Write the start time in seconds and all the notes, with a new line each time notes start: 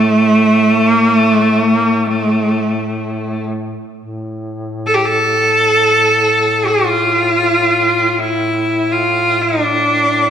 Already playing: A2 A3
0.87 A#3
1.17 A3
1.68 A#3
1.98 A3
3.98 A2
4.86 A4
4.94 G4
5.05 A4
6.67 F4
8.19 E4
8.92 F4
9.42 D4